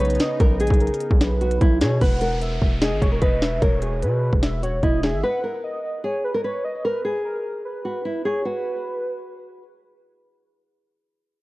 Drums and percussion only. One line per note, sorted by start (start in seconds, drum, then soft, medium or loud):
0.05 closed hi-hat medium
0.10 closed hi-hat medium
0.15 closed hi-hat soft
0.20 snare loud
0.20 closed hi-hat medium
0.40 kick loud
0.40 closed hi-hat medium
0.60 closed hi-hat medium
0.60 open hi-hat medium
0.67 kick medium
0.67 closed hi-hat medium
0.74 closed hi-hat medium
0.80 closed hi-hat medium
0.87 closed hi-hat medium
0.94 closed hi-hat medium
1.00 closed hi-hat medium
1.11 kick loud
1.21 snare loud
1.21 closed hi-hat medium
1.41 closed hi-hat soft
1.51 closed hi-hat medium
1.61 kick loud
1.61 closed hi-hat medium
1.81 snare loud
1.81 closed hi-hat medium
2.01 kick loud
2.01 closed hi-hat medium
2.21 closed hi-hat medium
2.41 closed hi-hat medium
2.62 kick medium
2.82 snare loud
2.82 closed hi-hat medium
3.02 kick medium
3.02 closed hi-hat medium
3.22 kick loud
3.22 closed hi-hat medium
3.42 snare loud
3.62 kick loud
3.62 closed hi-hat medium
3.82 closed hi-hat medium
4.03 closed hi-hat medium
4.33 kick medium
4.43 snare loud
4.43 closed hi-hat medium
4.63 closed hi-hat medium
4.83 kick loud
4.83 closed hi-hat medium
5.03 snare loud